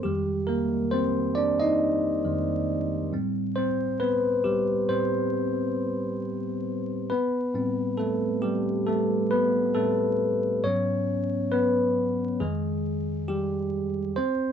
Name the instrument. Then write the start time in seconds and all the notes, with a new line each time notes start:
tine electric piano
0.03 F2 D#3 G3 G#3 G4
0.47 A#3 A#4
0.91 C4 C5
1.35 D4 D5
1.60 D#4 D#5
2.24 F2 D#3 G#3
3.13 A2 G3 C4
3.56 C4 C5
4.00 B3 B4
4.44 G3 G4
4.89 A2 G3 C4 C5
7.10 B3 B4
7.54 A2 G3 C4
7.98 A3 A4
8.42 G3 G4
8.86 A3 A4
9.31 B3 B4
9.74 A2 G3 A3 C4 A4
10.63 G#2 F#3 B3 C#4 C#5
11.52 B3 B4
12.40 F2 D#3 G#3 G#4
13.28 G3 G4
14.16 C4 C5